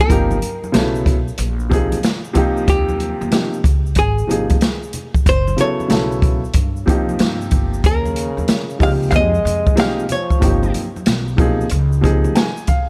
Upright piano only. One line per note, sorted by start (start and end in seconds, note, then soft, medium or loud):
0.00 0.11 G#4 medium
0.08 0.34 C3 medium
0.08 0.35 F3 medium
0.08 0.35 A#3 medium
0.08 0.36 D#4 medium
0.08 0.36 G4 medium
0.72 1.14 C#3 medium
0.72 1.15 F#3 medium
0.72 1.15 B3 medium
0.72 1.15 E4 medium
0.72 1.16 A4 medium
1.70 1.96 C3 medium
1.70 1.96 F3 medium
1.70 1.97 A#3 medium
1.70 1.97 D#4 medium
1.70 1.98 G#4 medium
2.33 3.27 C3 medium
2.33 3.27 F3 medium
2.33 3.28 A#3 medium
2.33 3.28 D#4 medium
2.33 3.29 G4 loud
3.31 3.57 C3 medium
3.31 3.58 F3 medium
3.31 3.58 A#3 medium
3.31 3.58 D#4 soft
3.31 3.59 G4 medium
4.27 4.54 C3 medium
4.27 4.54 F3 medium
4.27 4.55 A#3 medium
4.27 4.55 D#4 medium
4.27 4.56 G#4 medium
5.57 5.87 C#3 medium
5.57 5.88 F#3 medium
5.57 5.89 B3 medium
5.57 5.90 E4 medium
5.57 5.91 A4 medium
5.88 6.39 C#3 medium
5.88 6.39 F#3 medium
5.88 6.39 B3 medium
5.88 6.40 E4 medium
5.88 6.40 A4 medium
6.86 7.79 C3 medium
6.86 7.79 F3 medium
6.86 7.80 A#3 medium
6.86 7.80 D#4 medium
6.86 7.81 G4 medium
8.79 9.29 C3 medium
8.79 9.30 F3 medium
8.79 9.30 A#3 soft
8.79 9.31 D#4 medium
8.79 9.31 G4 medium
9.76 10.02 C3 medium
9.76 10.03 F3 medium
9.76 10.03 A#3 medium
9.76 10.04 D#4 medium
9.80 10.04 G4 medium
10.40 10.82 C3 medium
10.40 10.82 F3 medium
10.40 10.83 A#3 medium
10.40 10.83 D#4 medium
10.40 10.84 G4 medium
11.37 11.63 C3 medium
11.37 11.64 F3 medium
11.37 11.64 A#3 medium
11.37 11.65 D#4 medium
11.37 11.65 G#4 medium
12.01 12.43 C3 medium
12.01 12.43 F3 medium
12.01 12.44 A#3 medium
12.01 12.44 D#4 medium
12.01 12.45 G#4 medium
12.35 12.66 G#5 medium
12.68 12.89 F5 medium